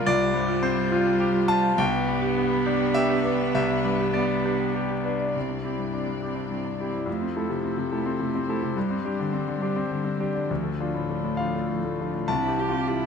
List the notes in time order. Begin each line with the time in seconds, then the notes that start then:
Already playing: F4
0.05 C2 G3 F4 G4 C5 D5
0.34 G2 C5
0.48 F4
0.62 C4 C5
0.78 C5
0.91 F4
1.06 G5
1.20 G4 G5
1.34 F4
1.48 F4 C5 A5
1.63 F5
1.77 C2 B3 D4 G4 B4 G5
2.08 G2 B4
2.22 G4
2.38 B3
2.51 B4
2.66 D4 G4
2.80 G5
2.94 G4 E5 G5
3.10 G4
3.25 D4 B4
3.40 D5
3.55 C2 G4 E5
3.85 G2 B4
4.00 G4
4.13 B3 D5
4.30 B4
4.45 D4 G4
4.59 G5
4.74 G4 G5
4.89 G4
5.04 D4 B4
5.19 D5
5.34 C2 C4 E4 G4 D5
5.49 D4
5.63 C4 E4 G4
5.79 G2
5.93 C4 D4
6.08 G2
6.22 C4 E4 G4
6.36 D4
6.51 G2 C4
6.66 D4
6.80 C4 E4 G4
6.93 G2
7.06 F2 C5
7.10 A3 A4
7.22 C4
7.36 A3 E4 A4
7.50 C3
7.64 A3 C4
7.78 C3
7.92 A3 E4 A4
8.06 C4
8.20 C3 A3
8.35 C4
8.49 A3 E4 A4
8.63 C3
8.77 G2 G3 D4 G4
8.91 C4
9.04 G3 D4 G4
9.20 D3
9.30 G3 C4
9.48 D3
9.59 G3 D4 G4
9.76 C4
9.90 D3 G3
10.04 C4
10.19 G3 D4 G4
10.34 D3
10.47 D2 F3 F4 A4
10.63 A3
10.78 F3 D4 F4
10.94 A2
11.08 F3 A3
11.24 A2
11.37 F3 D4 F4 F5
11.55 A3
11.69 A2 F3
11.84 A3
11.99 F3 D4 F4
12.14 A2
12.28 C2 E3 C4 D4 E4 G4 A5
12.42 C5
12.48 G4
12.57 E4 G4
12.68 C4 F4
12.86 E4 G4